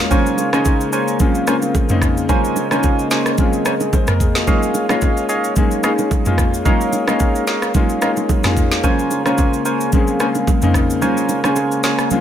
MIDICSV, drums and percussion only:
0, 0, Header, 1, 2, 480
1, 0, Start_track
1, 0, Key_signature, -5, "minor"
1, 0, Tempo, 545455
1, 97, Time_signature, 4, 2, 24, 8
1, 10741, End_track
2, 0, Start_track
2, 0, Title_t, "Drums"
2, 97, Note_on_c, 9, 36, 118
2, 97, Note_on_c, 9, 82, 70
2, 100, Note_on_c, 9, 64, 80
2, 185, Note_off_c, 9, 36, 0
2, 185, Note_off_c, 9, 82, 0
2, 188, Note_off_c, 9, 64, 0
2, 232, Note_on_c, 9, 82, 54
2, 320, Note_off_c, 9, 82, 0
2, 333, Note_on_c, 9, 61, 68
2, 336, Note_on_c, 9, 82, 84
2, 421, Note_off_c, 9, 61, 0
2, 424, Note_off_c, 9, 82, 0
2, 466, Note_on_c, 9, 37, 96
2, 469, Note_on_c, 9, 61, 71
2, 471, Note_on_c, 9, 82, 52
2, 554, Note_off_c, 9, 37, 0
2, 557, Note_off_c, 9, 61, 0
2, 559, Note_off_c, 9, 82, 0
2, 572, Note_on_c, 9, 82, 75
2, 576, Note_on_c, 9, 60, 67
2, 577, Note_on_c, 9, 36, 84
2, 660, Note_off_c, 9, 82, 0
2, 664, Note_off_c, 9, 60, 0
2, 665, Note_off_c, 9, 36, 0
2, 710, Note_on_c, 9, 82, 50
2, 798, Note_off_c, 9, 82, 0
2, 815, Note_on_c, 9, 82, 85
2, 903, Note_off_c, 9, 82, 0
2, 948, Note_on_c, 9, 82, 50
2, 1036, Note_off_c, 9, 82, 0
2, 1052, Note_on_c, 9, 82, 82
2, 1056, Note_on_c, 9, 36, 110
2, 1056, Note_on_c, 9, 64, 87
2, 1140, Note_off_c, 9, 82, 0
2, 1144, Note_off_c, 9, 36, 0
2, 1144, Note_off_c, 9, 64, 0
2, 1185, Note_on_c, 9, 82, 51
2, 1273, Note_off_c, 9, 82, 0
2, 1295, Note_on_c, 9, 82, 84
2, 1298, Note_on_c, 9, 37, 104
2, 1383, Note_off_c, 9, 82, 0
2, 1386, Note_off_c, 9, 37, 0
2, 1425, Note_on_c, 9, 82, 58
2, 1427, Note_on_c, 9, 61, 70
2, 1513, Note_off_c, 9, 82, 0
2, 1515, Note_off_c, 9, 61, 0
2, 1537, Note_on_c, 9, 36, 92
2, 1537, Note_on_c, 9, 60, 80
2, 1537, Note_on_c, 9, 64, 78
2, 1539, Note_on_c, 9, 82, 74
2, 1625, Note_off_c, 9, 36, 0
2, 1625, Note_off_c, 9, 60, 0
2, 1625, Note_off_c, 9, 64, 0
2, 1627, Note_off_c, 9, 82, 0
2, 1663, Note_on_c, 9, 82, 65
2, 1670, Note_on_c, 9, 45, 89
2, 1751, Note_off_c, 9, 82, 0
2, 1758, Note_off_c, 9, 45, 0
2, 1774, Note_on_c, 9, 37, 95
2, 1778, Note_on_c, 9, 36, 91
2, 1779, Note_on_c, 9, 82, 85
2, 1862, Note_off_c, 9, 37, 0
2, 1866, Note_off_c, 9, 36, 0
2, 1867, Note_off_c, 9, 82, 0
2, 1912, Note_on_c, 9, 82, 58
2, 2000, Note_off_c, 9, 82, 0
2, 2016, Note_on_c, 9, 36, 120
2, 2016, Note_on_c, 9, 82, 70
2, 2019, Note_on_c, 9, 64, 81
2, 2104, Note_off_c, 9, 36, 0
2, 2104, Note_off_c, 9, 82, 0
2, 2107, Note_off_c, 9, 64, 0
2, 2150, Note_on_c, 9, 82, 54
2, 2238, Note_off_c, 9, 82, 0
2, 2252, Note_on_c, 9, 61, 70
2, 2255, Note_on_c, 9, 82, 88
2, 2340, Note_off_c, 9, 61, 0
2, 2343, Note_off_c, 9, 82, 0
2, 2385, Note_on_c, 9, 37, 95
2, 2388, Note_on_c, 9, 61, 70
2, 2391, Note_on_c, 9, 82, 51
2, 2473, Note_off_c, 9, 37, 0
2, 2476, Note_off_c, 9, 61, 0
2, 2479, Note_off_c, 9, 82, 0
2, 2492, Note_on_c, 9, 82, 77
2, 2496, Note_on_c, 9, 60, 67
2, 2497, Note_on_c, 9, 36, 86
2, 2580, Note_off_c, 9, 82, 0
2, 2584, Note_off_c, 9, 60, 0
2, 2585, Note_off_c, 9, 36, 0
2, 2630, Note_on_c, 9, 82, 46
2, 2718, Note_off_c, 9, 82, 0
2, 2736, Note_on_c, 9, 82, 84
2, 2738, Note_on_c, 9, 38, 74
2, 2824, Note_off_c, 9, 82, 0
2, 2826, Note_off_c, 9, 38, 0
2, 2868, Note_on_c, 9, 37, 93
2, 2869, Note_on_c, 9, 82, 53
2, 2956, Note_off_c, 9, 37, 0
2, 2957, Note_off_c, 9, 82, 0
2, 2973, Note_on_c, 9, 82, 83
2, 2976, Note_on_c, 9, 36, 114
2, 2976, Note_on_c, 9, 64, 87
2, 3061, Note_off_c, 9, 82, 0
2, 3064, Note_off_c, 9, 36, 0
2, 3064, Note_off_c, 9, 64, 0
2, 3105, Note_on_c, 9, 82, 53
2, 3193, Note_off_c, 9, 82, 0
2, 3215, Note_on_c, 9, 82, 82
2, 3218, Note_on_c, 9, 37, 98
2, 3303, Note_off_c, 9, 82, 0
2, 3306, Note_off_c, 9, 37, 0
2, 3346, Note_on_c, 9, 82, 57
2, 3348, Note_on_c, 9, 61, 74
2, 3434, Note_off_c, 9, 82, 0
2, 3436, Note_off_c, 9, 61, 0
2, 3457, Note_on_c, 9, 36, 91
2, 3458, Note_on_c, 9, 60, 81
2, 3458, Note_on_c, 9, 64, 78
2, 3460, Note_on_c, 9, 82, 73
2, 3545, Note_off_c, 9, 36, 0
2, 3546, Note_off_c, 9, 60, 0
2, 3546, Note_off_c, 9, 64, 0
2, 3548, Note_off_c, 9, 82, 0
2, 3583, Note_on_c, 9, 82, 63
2, 3589, Note_on_c, 9, 37, 96
2, 3591, Note_on_c, 9, 45, 87
2, 3671, Note_off_c, 9, 82, 0
2, 3677, Note_off_c, 9, 37, 0
2, 3679, Note_off_c, 9, 45, 0
2, 3698, Note_on_c, 9, 36, 97
2, 3700, Note_on_c, 9, 82, 82
2, 3786, Note_off_c, 9, 36, 0
2, 3788, Note_off_c, 9, 82, 0
2, 3829, Note_on_c, 9, 38, 70
2, 3833, Note_on_c, 9, 82, 58
2, 3917, Note_off_c, 9, 38, 0
2, 3921, Note_off_c, 9, 82, 0
2, 3937, Note_on_c, 9, 36, 118
2, 3937, Note_on_c, 9, 82, 69
2, 3940, Note_on_c, 9, 64, 77
2, 4025, Note_off_c, 9, 36, 0
2, 4025, Note_off_c, 9, 82, 0
2, 4028, Note_off_c, 9, 64, 0
2, 4071, Note_on_c, 9, 82, 54
2, 4159, Note_off_c, 9, 82, 0
2, 4173, Note_on_c, 9, 61, 70
2, 4176, Note_on_c, 9, 82, 87
2, 4261, Note_off_c, 9, 61, 0
2, 4264, Note_off_c, 9, 82, 0
2, 4306, Note_on_c, 9, 37, 98
2, 4309, Note_on_c, 9, 61, 75
2, 4311, Note_on_c, 9, 82, 52
2, 4394, Note_off_c, 9, 37, 0
2, 4397, Note_off_c, 9, 61, 0
2, 4399, Note_off_c, 9, 82, 0
2, 4412, Note_on_c, 9, 82, 81
2, 4417, Note_on_c, 9, 36, 81
2, 4417, Note_on_c, 9, 60, 69
2, 4500, Note_off_c, 9, 82, 0
2, 4505, Note_off_c, 9, 36, 0
2, 4505, Note_off_c, 9, 60, 0
2, 4551, Note_on_c, 9, 82, 49
2, 4639, Note_off_c, 9, 82, 0
2, 4655, Note_on_c, 9, 82, 83
2, 4743, Note_off_c, 9, 82, 0
2, 4789, Note_on_c, 9, 82, 52
2, 4877, Note_off_c, 9, 82, 0
2, 4893, Note_on_c, 9, 82, 81
2, 4896, Note_on_c, 9, 36, 107
2, 4897, Note_on_c, 9, 64, 86
2, 4981, Note_off_c, 9, 82, 0
2, 4984, Note_off_c, 9, 36, 0
2, 4985, Note_off_c, 9, 64, 0
2, 5025, Note_on_c, 9, 82, 51
2, 5113, Note_off_c, 9, 82, 0
2, 5135, Note_on_c, 9, 82, 82
2, 5138, Note_on_c, 9, 37, 98
2, 5223, Note_off_c, 9, 82, 0
2, 5226, Note_off_c, 9, 37, 0
2, 5265, Note_on_c, 9, 82, 54
2, 5268, Note_on_c, 9, 61, 70
2, 5353, Note_off_c, 9, 82, 0
2, 5356, Note_off_c, 9, 61, 0
2, 5377, Note_on_c, 9, 36, 89
2, 5377, Note_on_c, 9, 60, 84
2, 5377, Note_on_c, 9, 64, 77
2, 5380, Note_on_c, 9, 82, 74
2, 5465, Note_off_c, 9, 36, 0
2, 5465, Note_off_c, 9, 60, 0
2, 5465, Note_off_c, 9, 64, 0
2, 5468, Note_off_c, 9, 82, 0
2, 5504, Note_on_c, 9, 82, 65
2, 5511, Note_on_c, 9, 45, 87
2, 5592, Note_off_c, 9, 82, 0
2, 5599, Note_off_c, 9, 45, 0
2, 5614, Note_on_c, 9, 37, 90
2, 5618, Note_on_c, 9, 36, 97
2, 5620, Note_on_c, 9, 82, 85
2, 5702, Note_off_c, 9, 37, 0
2, 5706, Note_off_c, 9, 36, 0
2, 5708, Note_off_c, 9, 82, 0
2, 5753, Note_on_c, 9, 82, 59
2, 5841, Note_off_c, 9, 82, 0
2, 5857, Note_on_c, 9, 36, 117
2, 5857, Note_on_c, 9, 82, 67
2, 5859, Note_on_c, 9, 64, 80
2, 5945, Note_off_c, 9, 36, 0
2, 5945, Note_off_c, 9, 82, 0
2, 5947, Note_off_c, 9, 64, 0
2, 5991, Note_on_c, 9, 82, 52
2, 6079, Note_off_c, 9, 82, 0
2, 6092, Note_on_c, 9, 61, 72
2, 6096, Note_on_c, 9, 82, 83
2, 6180, Note_off_c, 9, 61, 0
2, 6184, Note_off_c, 9, 82, 0
2, 6226, Note_on_c, 9, 37, 97
2, 6229, Note_on_c, 9, 61, 72
2, 6232, Note_on_c, 9, 82, 52
2, 6314, Note_off_c, 9, 37, 0
2, 6317, Note_off_c, 9, 61, 0
2, 6320, Note_off_c, 9, 82, 0
2, 6332, Note_on_c, 9, 82, 74
2, 6336, Note_on_c, 9, 60, 72
2, 6337, Note_on_c, 9, 36, 83
2, 6420, Note_off_c, 9, 82, 0
2, 6424, Note_off_c, 9, 60, 0
2, 6425, Note_off_c, 9, 36, 0
2, 6471, Note_on_c, 9, 82, 49
2, 6559, Note_off_c, 9, 82, 0
2, 6576, Note_on_c, 9, 82, 86
2, 6578, Note_on_c, 9, 38, 72
2, 6664, Note_off_c, 9, 82, 0
2, 6666, Note_off_c, 9, 38, 0
2, 6708, Note_on_c, 9, 37, 90
2, 6709, Note_on_c, 9, 82, 52
2, 6796, Note_off_c, 9, 37, 0
2, 6797, Note_off_c, 9, 82, 0
2, 6813, Note_on_c, 9, 82, 79
2, 6816, Note_on_c, 9, 36, 110
2, 6816, Note_on_c, 9, 64, 90
2, 6901, Note_off_c, 9, 82, 0
2, 6904, Note_off_c, 9, 36, 0
2, 6904, Note_off_c, 9, 64, 0
2, 6945, Note_on_c, 9, 82, 51
2, 7033, Note_off_c, 9, 82, 0
2, 7055, Note_on_c, 9, 82, 82
2, 7058, Note_on_c, 9, 37, 102
2, 7143, Note_off_c, 9, 82, 0
2, 7146, Note_off_c, 9, 37, 0
2, 7186, Note_on_c, 9, 82, 56
2, 7188, Note_on_c, 9, 61, 77
2, 7274, Note_off_c, 9, 82, 0
2, 7276, Note_off_c, 9, 61, 0
2, 7297, Note_on_c, 9, 36, 90
2, 7298, Note_on_c, 9, 60, 77
2, 7298, Note_on_c, 9, 64, 80
2, 7300, Note_on_c, 9, 82, 76
2, 7385, Note_off_c, 9, 36, 0
2, 7386, Note_off_c, 9, 60, 0
2, 7386, Note_off_c, 9, 64, 0
2, 7388, Note_off_c, 9, 82, 0
2, 7423, Note_on_c, 9, 82, 67
2, 7429, Note_on_c, 9, 37, 99
2, 7429, Note_on_c, 9, 38, 70
2, 7430, Note_on_c, 9, 45, 86
2, 7511, Note_off_c, 9, 82, 0
2, 7517, Note_off_c, 9, 37, 0
2, 7517, Note_off_c, 9, 38, 0
2, 7518, Note_off_c, 9, 45, 0
2, 7538, Note_on_c, 9, 36, 96
2, 7540, Note_on_c, 9, 82, 84
2, 7626, Note_off_c, 9, 36, 0
2, 7628, Note_off_c, 9, 82, 0
2, 7669, Note_on_c, 9, 38, 72
2, 7673, Note_on_c, 9, 82, 57
2, 7757, Note_off_c, 9, 38, 0
2, 7761, Note_off_c, 9, 82, 0
2, 7776, Note_on_c, 9, 82, 70
2, 7777, Note_on_c, 9, 36, 123
2, 7779, Note_on_c, 9, 64, 76
2, 7864, Note_off_c, 9, 82, 0
2, 7865, Note_off_c, 9, 36, 0
2, 7867, Note_off_c, 9, 64, 0
2, 7911, Note_on_c, 9, 82, 51
2, 7999, Note_off_c, 9, 82, 0
2, 8012, Note_on_c, 9, 61, 68
2, 8015, Note_on_c, 9, 82, 88
2, 8100, Note_off_c, 9, 61, 0
2, 8103, Note_off_c, 9, 82, 0
2, 8146, Note_on_c, 9, 37, 92
2, 8150, Note_on_c, 9, 61, 71
2, 8151, Note_on_c, 9, 82, 53
2, 8234, Note_off_c, 9, 37, 0
2, 8238, Note_off_c, 9, 61, 0
2, 8239, Note_off_c, 9, 82, 0
2, 8252, Note_on_c, 9, 82, 80
2, 8257, Note_on_c, 9, 36, 84
2, 8259, Note_on_c, 9, 60, 71
2, 8340, Note_off_c, 9, 82, 0
2, 8345, Note_off_c, 9, 36, 0
2, 8347, Note_off_c, 9, 60, 0
2, 8390, Note_on_c, 9, 82, 51
2, 8478, Note_off_c, 9, 82, 0
2, 8496, Note_on_c, 9, 82, 87
2, 8584, Note_off_c, 9, 82, 0
2, 8628, Note_on_c, 9, 82, 52
2, 8716, Note_off_c, 9, 82, 0
2, 8733, Note_on_c, 9, 82, 79
2, 8736, Note_on_c, 9, 36, 113
2, 8737, Note_on_c, 9, 64, 87
2, 8821, Note_off_c, 9, 82, 0
2, 8824, Note_off_c, 9, 36, 0
2, 8825, Note_off_c, 9, 64, 0
2, 8865, Note_on_c, 9, 82, 50
2, 8953, Note_off_c, 9, 82, 0
2, 8975, Note_on_c, 9, 82, 84
2, 8978, Note_on_c, 9, 37, 100
2, 9063, Note_off_c, 9, 82, 0
2, 9066, Note_off_c, 9, 37, 0
2, 9106, Note_on_c, 9, 82, 54
2, 9109, Note_on_c, 9, 61, 73
2, 9194, Note_off_c, 9, 82, 0
2, 9197, Note_off_c, 9, 61, 0
2, 9217, Note_on_c, 9, 36, 95
2, 9218, Note_on_c, 9, 60, 84
2, 9218, Note_on_c, 9, 64, 78
2, 9220, Note_on_c, 9, 82, 77
2, 9305, Note_off_c, 9, 36, 0
2, 9306, Note_off_c, 9, 60, 0
2, 9306, Note_off_c, 9, 64, 0
2, 9308, Note_off_c, 9, 82, 0
2, 9343, Note_on_c, 9, 82, 65
2, 9351, Note_on_c, 9, 45, 82
2, 9431, Note_off_c, 9, 82, 0
2, 9439, Note_off_c, 9, 45, 0
2, 9454, Note_on_c, 9, 37, 90
2, 9458, Note_on_c, 9, 36, 95
2, 9460, Note_on_c, 9, 82, 82
2, 9542, Note_off_c, 9, 37, 0
2, 9546, Note_off_c, 9, 36, 0
2, 9548, Note_off_c, 9, 82, 0
2, 9593, Note_on_c, 9, 82, 60
2, 9681, Note_off_c, 9, 82, 0
2, 9697, Note_on_c, 9, 82, 68
2, 9699, Note_on_c, 9, 64, 77
2, 9785, Note_off_c, 9, 82, 0
2, 9787, Note_off_c, 9, 64, 0
2, 9832, Note_on_c, 9, 82, 54
2, 9920, Note_off_c, 9, 82, 0
2, 9932, Note_on_c, 9, 61, 70
2, 9935, Note_on_c, 9, 82, 88
2, 10020, Note_off_c, 9, 61, 0
2, 10023, Note_off_c, 9, 82, 0
2, 10066, Note_on_c, 9, 37, 97
2, 10069, Note_on_c, 9, 61, 72
2, 10071, Note_on_c, 9, 82, 52
2, 10154, Note_off_c, 9, 37, 0
2, 10157, Note_off_c, 9, 61, 0
2, 10159, Note_off_c, 9, 82, 0
2, 10172, Note_on_c, 9, 82, 74
2, 10177, Note_on_c, 9, 60, 68
2, 10260, Note_off_c, 9, 82, 0
2, 10265, Note_off_c, 9, 60, 0
2, 10310, Note_on_c, 9, 82, 47
2, 10398, Note_off_c, 9, 82, 0
2, 10415, Note_on_c, 9, 82, 86
2, 10417, Note_on_c, 9, 38, 73
2, 10503, Note_off_c, 9, 82, 0
2, 10505, Note_off_c, 9, 38, 0
2, 10547, Note_on_c, 9, 37, 94
2, 10548, Note_on_c, 9, 82, 51
2, 10635, Note_off_c, 9, 37, 0
2, 10636, Note_off_c, 9, 82, 0
2, 10653, Note_on_c, 9, 82, 84
2, 10657, Note_on_c, 9, 64, 84
2, 10741, Note_off_c, 9, 64, 0
2, 10741, Note_off_c, 9, 82, 0
2, 10741, End_track
0, 0, End_of_file